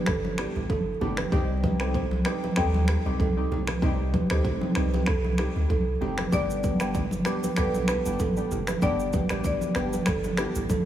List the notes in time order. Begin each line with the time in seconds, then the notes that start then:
0.06 G1 D4 A4, finger snap, kick, cross-stick
0.25 high conga
0.38 G3 B3 D4 E4 G4, finger snap, cross-stick
0.56 A1 E4 G4
0.70 G1 D4 A4, kick, high conga
1.01 G1 G3 B3 D4 E4 G4, low conga
1.17 G4 B4, finger snap, cross-stick, high conga
1.32 C2 G3 C4 D#4 G4, kick, low conga
1.64 G4 B4, kick, high conga
1.80 G3 C4 D#4 G4 A4 C5, finger snap, cross-stick
1.94 G4 C5, kick, low conga
2.11 high conga
2.25 G3 C4 D#4 G4 B4, finger snap, cross-stick
2.44 G4 B4, high conga
2.56 D#2 G3 C4 D#4 G4 A4, finger snap, kick, cross-stick
2.74 high conga
2.88 D#4 G4, finger snap, cross-stick
3.06 B1 G3 C4 D#4 G4
3.20 C2 D#4 A4, kick, high conga
3.37 G3 C4 D#4 G4
3.51 B1 D#4 G4, low conga
3.67 G4 B4, finger snap, cross-stick, high conga
3.82 C2 G3 C4 D#4 G4, kick, low conga
4.13 G4 B4, kick, high conga
4.30 D2 G3 C4 D#4 G4 A4 C5, finger snap, cross-stick
4.45 G4 C5, kick, low conga
4.61 high conga
4.75 C2 G3 C4 D#4 G4 B4, finger snap, cross-stick
4.94 G4 B4, high conga
5.06 C2 D#4 A4, finger snap, kick, cross-stick
5.25 high conga
5.38 G3 C4 D#4 G4, finger snap, cross-stick
5.56 D2 D#4 G4
5.70 C2 D#4 A4, kick, high conga
6.01 F#1 G3 C4 D#4 G4, low conga
6.18 G4 B4, finger snap, cross-stick, high conga
6.32 G1 G3 B3 D4 G4 D5, kick, low conga, shaker
6.50 shaker
6.64 G4 B4, kick, high conga, shaker
6.80 G3 B3 D4 G4 B4 D5, finger snap, cross-stick, shaker
6.94 B4 D5, kick, low conga, shaker
7.11 high conga, shaker
7.25 G3 B3 D4 G4 B4, finger snap, cross-stick, shaker
7.44 G4 B4, high conga, shaker
7.56 B1 G3 B3 D4 G4 A4 B4, finger snap, kick, cross-stick, shaker
7.74 high conga, shaker
7.88 E4 G4 B4, finger snap, cross-stick, shaker
8.05 G1 G3 B3 D4 E4 G4, shaker
8.20 A1 D4 A4, kick, high conga, shaker
8.37 G3 B3 D4 G4, shaker
8.51 G1 E4 G4, low conga, shaker
8.67 G4 B4, finger snap, cross-stick, high conga, shaker
8.82 G1 G3 B3 D4 G4 D5, kick, low conga, shaker
9.00 shaker
9.13 G4 B4, kick, high conga, shaker
9.29 A1 G3 B3 D4 G4 B4 D5, finger snap, cross-stick, shaker
9.44 B4 D5, kick, low conga, shaker
9.61 high conga, shaker
9.75 G1 G3 B3 D4 G4 B4, finger snap, cross-stick, shaker
9.93 G4 B4, high conga, shaker
10.06 G1 D4 A4, finger snap, kick, cross-stick, shaker
10.24 high conga, shaker
10.37 G3 B3 D4 E4 G4, finger snap, cross-stick, shaker
10.55 A1 E4 G4, shaker
10.70 G1 D4 A4, kick, high conga, shaker